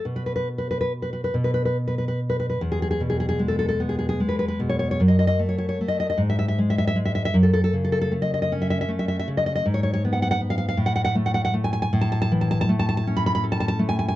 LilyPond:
\new Staff \with { instrumentName = "Nylon-string guitar" } { \time 6/8 \key e \major \tempo 4. = 51 << { r32 b'32 b'32 b'32 r32 b'32 b'32 b'32 r32 b'32 b'32 b'32 r32 b'32 b'32 b'32 r32 b'32 b'32 b'32 r32 b'32 b'32 b'32 | r32 gis'32 gis'32 gis'32 r32 gis'32 gis'32 gis'32 r32 a'32 a'32 a'32 r32 gis'32 gis'32 gis'32 r32 b'32 b'32 b'32 r32 cis''32 cis''32 cis''32 | r32 dis''32 dis''32 dis''32 r32 cis''32 cis''32 cis''32 r32 dis''32 dis''32 dis''32 r32 e''32 e''32 e''32 r32 e''32 e''32 e''32 r32 e''32 e''32 e''32 | r32 a'32 a'32 a'32 r32 a'32 a'32 a'32 r32 dis''32 dis''32 dis''32 r32 e''32 e''32 e''32 r32 e''32 e''32 e''32 r32 dis''32 dis''32 dis''32 |
r32 cis''32 cis''32 cis''32 r32 fis''32 fis''32 fis''32 r32 f''32 f''32 f''32 r32 fis''32 fis''32 fis''32 r32 fis''32 fis''32 fis''32 r32 gis''32 gis''32 gis''32 | \key a \major r32 a''32 a''32 a''32 r32 a''32 a''32 a''32 r32 a''32 a''32 a''32 r32 b''32 b''32 b''32 r32 a''32 a''32 a''32 r32 gis''32 gis''32 gis''32 | } \\ { b,4. b,4. | e,8 b,8 gis8 b8 gis8 b,8 | fis,8 a8 a8 gis,8 gis8 gis8 | fis,8 cis8 a8 cis'8 a8 cis8 |
gis,8 b8 b8 a,8 a8 a8 | a,8 e8 a8 cis'8 a'8 a8 | } >> }